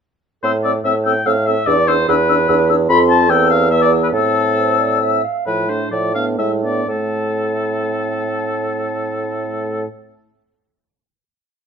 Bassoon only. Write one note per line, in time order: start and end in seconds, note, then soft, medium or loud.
0.43 0.80 A2 medium
0.85 1.21 A2 medium
1.26 1.62 A2 medium
1.67 2.04 E2 medium
2.09 2.44 E2 medium
2.49 2.85 E2 medium
2.89 3.31 F2 medium
3.30 4.12 E2 medium
4.13 5.22 A2 medium
5.46 5.86 A2 soft
5.92 6.33 A2 soft
6.38 6.83 A2 soft
6.88 9.86 A2 soft